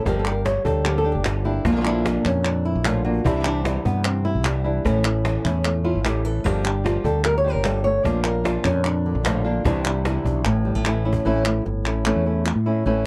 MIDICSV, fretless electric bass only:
0, 0, Header, 1, 2, 480
1, 0, Start_track
1, 0, Tempo, 400267
1, 68, Time_signature, 4, 2, 24, 8
1, 15668, End_track
2, 0, Start_track
2, 0, Title_t, "Fretless electric bass"
2, 0, Program_c, 0, 35
2, 63, Note_on_c, 0, 31, 84
2, 690, Note_off_c, 0, 31, 0
2, 777, Note_on_c, 0, 38, 74
2, 1378, Note_on_c, 0, 31, 84
2, 1396, Note_off_c, 0, 38, 0
2, 1902, Note_off_c, 0, 31, 0
2, 1977, Note_on_c, 0, 34, 87
2, 2605, Note_off_c, 0, 34, 0
2, 2701, Note_on_c, 0, 41, 78
2, 3302, Note_on_c, 0, 34, 86
2, 3320, Note_off_c, 0, 41, 0
2, 3823, Note_off_c, 0, 34, 0
2, 3896, Note_on_c, 0, 36, 88
2, 4523, Note_off_c, 0, 36, 0
2, 4619, Note_on_c, 0, 43, 76
2, 5219, Note_on_c, 0, 36, 85
2, 5237, Note_off_c, 0, 43, 0
2, 5739, Note_off_c, 0, 36, 0
2, 5812, Note_on_c, 0, 33, 91
2, 6439, Note_off_c, 0, 33, 0
2, 6532, Note_on_c, 0, 40, 83
2, 7137, Note_on_c, 0, 33, 81
2, 7155, Note_off_c, 0, 40, 0
2, 7657, Note_off_c, 0, 33, 0
2, 7730, Note_on_c, 0, 31, 84
2, 8357, Note_off_c, 0, 31, 0
2, 8444, Note_on_c, 0, 38, 83
2, 9043, Note_on_c, 0, 31, 89
2, 9061, Note_off_c, 0, 38, 0
2, 9569, Note_off_c, 0, 31, 0
2, 9646, Note_on_c, 0, 34, 86
2, 10275, Note_off_c, 0, 34, 0
2, 10370, Note_on_c, 0, 41, 90
2, 10970, Note_on_c, 0, 34, 95
2, 10988, Note_off_c, 0, 41, 0
2, 11494, Note_off_c, 0, 34, 0
2, 11572, Note_on_c, 0, 36, 101
2, 12200, Note_off_c, 0, 36, 0
2, 12286, Note_on_c, 0, 35, 75
2, 12499, Note_off_c, 0, 35, 0
2, 12539, Note_on_c, 0, 33, 101
2, 12852, Note_off_c, 0, 33, 0
2, 12894, Note_on_c, 0, 33, 97
2, 13419, Note_off_c, 0, 33, 0
2, 13500, Note_on_c, 0, 33, 88
2, 13919, Note_off_c, 0, 33, 0
2, 13984, Note_on_c, 0, 31, 75
2, 14218, Note_off_c, 0, 31, 0
2, 14218, Note_on_c, 0, 33, 82
2, 14535, Note_off_c, 0, 33, 0
2, 14585, Note_on_c, 0, 40, 74
2, 15004, Note_off_c, 0, 40, 0
2, 15057, Note_on_c, 0, 45, 74
2, 15376, Note_off_c, 0, 45, 0
2, 15421, Note_on_c, 0, 33, 94
2, 15668, Note_off_c, 0, 33, 0
2, 15668, End_track
0, 0, End_of_file